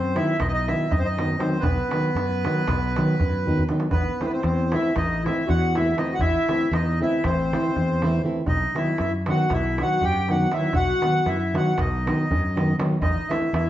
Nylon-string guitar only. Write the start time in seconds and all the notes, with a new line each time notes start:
0.16 D#3 F#3 B3 D#4
0.68 D#3 F#3 B3 D#4
1.17 D#3 F#3 B3 D#4
1.40 D#3 F#3 B3 D#4
1.92 D#3 F#3 B3 D#4
2.45 D#3 F#3 B3 D#4
2.97 D#3 F#3 B3 D#4
3.46 D#3 F#3 B3 D#4
3.69 D#3 F#3 B3 D#4
4.21 E3 A3 C4 E4
4.74 E3 A3 C4 E4
5.26 E3 A3 C4 E4
5.76 E3 A3 C4 E4
5.97 E3 A3 C4 E4
6.48 E3 A3 C4 E4
7.00 E3 A3 C4 E4
7.53 E3 A3 C4 E4
8.03 E3 A3 C4 E4
8.24 E3 A3 C4 E4
8.74 D#3 F#3 B3 D#4
9.27 D#3 F#3 B3 D#4
9.79 D#3 F#3 B3 D#4
10.30 D#3 F#3 B3 D#4
10.52 D#3 F#3 B3 D#4
11.02 D#3 F#3 B3 D#4
11.53 D#3 F#3 B3 D#4
12.06 D#3 F#3 B3 D#4
12.56 D#3 F#3 B3 D#4
12.79 D#3 F#3 B3 D#4
13.30 E3 A3 C4 E4